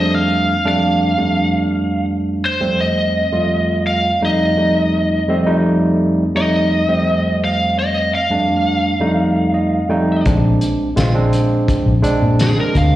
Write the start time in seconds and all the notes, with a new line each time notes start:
Already playing: F2 G3 A3 D4 D#5
0.15 F5
0.65 F2 G3 A3 D4 F5
1.17 F2 G3 A3 D4
2.46 C5
2.61 F2 G3 A3 C4
2.81 D#5
3.31 F2 G3 A3 F4
3.87 F5
4.21 F2 G3 A3 D#4 D#5
4.57 F2 G3 A3 D#4
5.28 F2 G3 A3 C4
5.46 F2 G3 A3 D#4
6.35 F2 G3 A3 D#4 D#5
6.88 F2 G3 A3 C4
7.44 F5
7.79 D#5
8.15 F5
8.30 F2 G3 A3 D4
9.00 F2 G3 A3 D#4
9.54 D#5
9.89 F2 G3 A3 D#4 G5
10.25 A#1 G#3 C4 D4, kick, closed hi-hat
10.61 closed hi-hat
10.96 A#1 G#3 C4 F4, snare, closed hi-hat, tambourine
11.15 G#3 C4 D4
11.33 closed hi-hat
11.68 kick, closed hi-hat
11.86 A#1
12.02 G#3 C4 D4, muted fingered electric bass stroke, closed hi-hat
12.22 A#2
12.39 G#4, snare, closed hi-hat, tambourine
12.57 G#3 C4 D4 A#4
12.75 D2 F5, kick, closed hi-hat